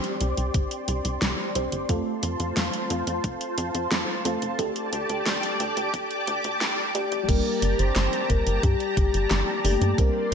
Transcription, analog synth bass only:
0, 0, Header, 1, 2, 480
1, 0, Start_track
1, 0, Key_signature, -2, "minor"
1, 0, Tempo, 674157
1, 1347, Time_signature, 4, 2, 24, 8
1, 7363, End_track
2, 0, Start_track
2, 0, Title_t, "Analog synth bass"
2, 0, Program_c, 0, 38
2, 147, Note_on_c, 0, 36, 96
2, 240, Note_off_c, 0, 36, 0
2, 267, Note_on_c, 0, 36, 79
2, 359, Note_off_c, 0, 36, 0
2, 387, Note_on_c, 0, 31, 99
2, 480, Note_off_c, 0, 31, 0
2, 626, Note_on_c, 0, 36, 95
2, 719, Note_off_c, 0, 36, 0
2, 746, Note_on_c, 0, 36, 79
2, 839, Note_off_c, 0, 36, 0
2, 866, Note_on_c, 0, 36, 98
2, 959, Note_off_c, 0, 36, 0
2, 1106, Note_on_c, 0, 36, 93
2, 1199, Note_off_c, 0, 36, 0
2, 1226, Note_on_c, 0, 31, 78
2, 1319, Note_off_c, 0, 31, 0
2, 1347, Note_on_c, 0, 41, 103
2, 1440, Note_off_c, 0, 41, 0
2, 1587, Note_on_c, 0, 41, 92
2, 1679, Note_off_c, 0, 41, 0
2, 1707, Note_on_c, 0, 41, 80
2, 1799, Note_off_c, 0, 41, 0
2, 1827, Note_on_c, 0, 41, 100
2, 1919, Note_off_c, 0, 41, 0
2, 2067, Note_on_c, 0, 41, 98
2, 2159, Note_off_c, 0, 41, 0
2, 2186, Note_on_c, 0, 41, 79
2, 2279, Note_off_c, 0, 41, 0
2, 2307, Note_on_c, 0, 29, 100
2, 2400, Note_off_c, 0, 29, 0
2, 2547, Note_on_c, 0, 41, 97
2, 2640, Note_off_c, 0, 41, 0
2, 2667, Note_on_c, 0, 41, 79
2, 2759, Note_off_c, 0, 41, 0
2, 2787, Note_on_c, 0, 41, 103
2, 2880, Note_off_c, 0, 41, 0
2, 3027, Note_on_c, 0, 41, 93
2, 3119, Note_off_c, 0, 41, 0
2, 3147, Note_on_c, 0, 29, 78
2, 3240, Note_off_c, 0, 29, 0
2, 3267, Note_on_c, 0, 38, 104
2, 3360, Note_off_c, 0, 38, 0
2, 3507, Note_on_c, 0, 38, 95
2, 3599, Note_off_c, 0, 38, 0
2, 3627, Note_on_c, 0, 38, 83
2, 3719, Note_off_c, 0, 38, 0
2, 3746, Note_on_c, 0, 38, 97
2, 3839, Note_off_c, 0, 38, 0
2, 3987, Note_on_c, 0, 38, 98
2, 4080, Note_off_c, 0, 38, 0
2, 4107, Note_on_c, 0, 38, 79
2, 4200, Note_off_c, 0, 38, 0
2, 4227, Note_on_c, 0, 26, 99
2, 4320, Note_off_c, 0, 26, 0
2, 4467, Note_on_c, 0, 38, 95
2, 4560, Note_off_c, 0, 38, 0
2, 4587, Note_on_c, 0, 38, 79
2, 4680, Note_off_c, 0, 38, 0
2, 4708, Note_on_c, 0, 33, 100
2, 4800, Note_off_c, 0, 33, 0
2, 4947, Note_on_c, 0, 38, 94
2, 5039, Note_off_c, 0, 38, 0
2, 5067, Note_on_c, 0, 33, 79
2, 5159, Note_off_c, 0, 33, 0
2, 5188, Note_on_c, 0, 31, 102
2, 5280, Note_off_c, 0, 31, 0
2, 5427, Note_on_c, 0, 31, 93
2, 5520, Note_off_c, 0, 31, 0
2, 5547, Note_on_c, 0, 31, 81
2, 5640, Note_off_c, 0, 31, 0
2, 5667, Note_on_c, 0, 31, 100
2, 5760, Note_off_c, 0, 31, 0
2, 5908, Note_on_c, 0, 31, 99
2, 6000, Note_off_c, 0, 31, 0
2, 6028, Note_on_c, 0, 31, 81
2, 6120, Note_off_c, 0, 31, 0
2, 6147, Note_on_c, 0, 43, 98
2, 6240, Note_off_c, 0, 43, 0
2, 6388, Note_on_c, 0, 31, 97
2, 6480, Note_off_c, 0, 31, 0
2, 6508, Note_on_c, 0, 31, 81
2, 6600, Note_off_c, 0, 31, 0
2, 6628, Note_on_c, 0, 31, 99
2, 6720, Note_off_c, 0, 31, 0
2, 6868, Note_on_c, 0, 31, 95
2, 6960, Note_off_c, 0, 31, 0
2, 6988, Note_on_c, 0, 43, 79
2, 7080, Note_off_c, 0, 43, 0
2, 7108, Note_on_c, 0, 36, 102
2, 7200, Note_off_c, 0, 36, 0
2, 7363, End_track
0, 0, End_of_file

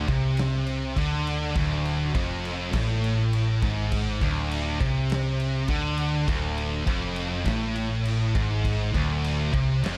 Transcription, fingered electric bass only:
0, 0, Header, 1, 2, 480
1, 0, Start_track
1, 0, Tempo, 590551
1, 1265, Time_signature, 4, 2, 24, 8
1, 8107, End_track
2, 0, Start_track
2, 0, Title_t, "Fingered electric bass"
2, 0, Program_c, 0, 33
2, 65, Note_on_c, 0, 36, 100
2, 752, Note_off_c, 0, 36, 0
2, 784, Note_on_c, 0, 38, 98
2, 1232, Note_off_c, 0, 38, 0
2, 1265, Note_on_c, 0, 26, 96
2, 1712, Note_off_c, 0, 26, 0
2, 1748, Note_on_c, 0, 29, 89
2, 2193, Note_off_c, 0, 29, 0
2, 2226, Note_on_c, 0, 33, 108
2, 2912, Note_off_c, 0, 33, 0
2, 2947, Note_on_c, 0, 32, 108
2, 3392, Note_off_c, 0, 32, 0
2, 3424, Note_on_c, 0, 26, 101
2, 3871, Note_off_c, 0, 26, 0
2, 3904, Note_on_c, 0, 36, 99
2, 4591, Note_off_c, 0, 36, 0
2, 4616, Note_on_c, 0, 38, 94
2, 5066, Note_off_c, 0, 38, 0
2, 5107, Note_on_c, 0, 26, 103
2, 5552, Note_off_c, 0, 26, 0
2, 5583, Note_on_c, 0, 29, 93
2, 6030, Note_off_c, 0, 29, 0
2, 6066, Note_on_c, 0, 33, 97
2, 6752, Note_off_c, 0, 33, 0
2, 6787, Note_on_c, 0, 32, 109
2, 7233, Note_off_c, 0, 32, 0
2, 7269, Note_on_c, 0, 26, 111
2, 7714, Note_off_c, 0, 26, 0
2, 7753, Note_on_c, 0, 36, 96
2, 7973, Note_off_c, 0, 36, 0
2, 7988, Note_on_c, 0, 29, 95
2, 8107, Note_off_c, 0, 29, 0
2, 8107, End_track
0, 0, End_of_file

